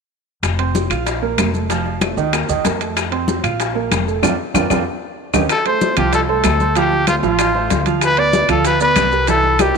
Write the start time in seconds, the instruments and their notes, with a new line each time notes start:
0.43 upright bass F1, high bongo, high conga, high timbale, claves, maracas
0.59 grand piano C4 C5, high conga, high timbale
0.75 high bongo, high conga, maracas
0.90 upright bass A#1, grand piano F4 F5, high conga, high timbale, claves, maracas
1.07 high bongo, high conga, high timbale, maracas
1.22 grand piano A#3 A#4, high conga
1.38 upright bass F1, high bongo, low bongo, high conga, high timbale, low timbale, claves, maracas
1.54 grand piano A3 A4, high conga, maracas
1.69 grand piano F3 F4, high bongo, high timbale, maracas
1.85 high bongo, high conga
2.01 grand piano A3 A4, high bongo, high conga, high timbale, claves, maracas
2.17 upright bass D#2, grand piano D#3 D#4, high bongo, high conga, maracas
2.33 grand piano A#3 A#4, high bongo, high conga, high timbale, claves, maracas
2.49 upright bass D#2, grand piano D#3 D#4, high bongo, high conga, maracas
2.65 upright bass F2, grand piano A#3 A#4, high bongo, low bongo, high conga, high timbale, maracas
2.80 grand piano A3 A4, high timbale, maracas
2.96 high bongo, high conga, high timbale, claves, maracas
3.12 grand piano C4 C5, high conga, high timbale
3.28 high bongo, high conga, maracas
3.43 upright bass A#1, grand piano F4 F5, high conga, high timbale, claves, maracas
3.60 high bongo, high conga, high timbale, maracas
3.75 grand piano A#3 A#4, high conga
3.91 upright bass F1, high bongo, low bongo, high conga, high timbale, claves, maracas
4.07 grand piano A3 A4, maracas
4.23 upright bass F2, grand piano C4 D4 F4, low bongo, high conga, high timbale, claves, maracas
4.54 upright bass F2, grand piano C4 D4 F4, low bongo, high conga, high timbale, claves, maracas
4.70 upright bass F2, grand piano C4 D4 F4, low bongo, high conga, high timbale, claves, maracas
5.33 upright bass D#2, grand piano C#4 D#4 G4, low bongo, high conga, high timbale, claves, maracas
5.49 trumpet A4, high bongo, high conga, high timbale, claves, maracas
5.66 grand piano A3 A4 C5, trumpet C5, high conga, high timbale
5.81 high bongo, high conga, maracas
5.97 upright bass C2, grand piano F3 F4 F5, trumpet G4, high conga, low conga, high timbale, claves, maracas
6.13 trumpet A4, high bongo, high conga, high timbale, maracas
6.28 grand piano A3 A4 C5, trumpet A4, high conga
6.44 upright bass D2, high bongo, low bongo, high conga, high timbale, low timbale, claves, maracas
6.60 grand piano A3 A4 C5, high conga, maracas
6.75 grand piano F3 F4 F5, trumpet G4, high bongo, high conga, high timbale, maracas
6.92 high bongo, high conga
7.07 grand piano A3 A4 C5, trumpet F4, high bongo, high conga, high timbale, claves, maracas
7.23 upright bass A1, grand piano F3 F4 F5, trumpet F4, high bongo, high conga, maracas
7.39 high bongo, high conga, high timbale, claves, maracas
7.55 grand piano A3 A4 C5, high bongo, high conga
7.70 upright bass D2, high bongo, low bongo, high conga, high timbale, maracas
7.86 grand piano F3 F4 F5, high conga, high timbale, maracas
8.01 trumpet B4, high bongo, high conga, high timbale, claves, maracas
8.17 grand piano B3 B4 D5, trumpet D5, high conga, high timbale
8.33 high bongo, high conga, maracas
8.49 upright bass D2, grand piano F3 F4 F5, trumpet A4, high conga, low conga, high timbale, claves, maracas
8.65 trumpet B4, high bongo, high conga, high timbale, maracas
8.80 grand piano B3 B4 D5, trumpet B4, high conga, maracas
8.96 upright bass C2, high bongo, low bongo, high conga, high timbale, claves, maracas
9.12 grand piano G3 G4 A#4, maracas
9.27 grand piano E3 E4 E5, trumpet A4, high bongo, high conga, high timbale, maracas
9.44 high bongo, high conga
9.59 grand piano G3 G4 A#4, trumpet G4, high bongo, high conga, high timbale, claves, maracas